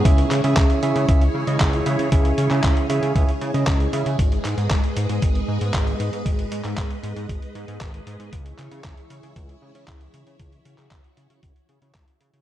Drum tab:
HH |xxxxxxxxxx-xxxxx|xxxxxxxxxxxxxxxx|xxxxxxxxxx-xxxxx|xxxxxxxxxxxxxxxx|
CP |--x-x-------x---|---xx-------x---|--x-x-------x---|---xx-------x---|
BD |o---o---o---o---|o---o---o---o---|o---o---o---o---|o---o---o---o---|

HH |xxxxxxxxxx-xxxxx|xxxxxxxxxxxxxxxx|
CP |--x-x-------x---|---xx-------x---|
BD |o---o---o---o---|o---o---o---o---|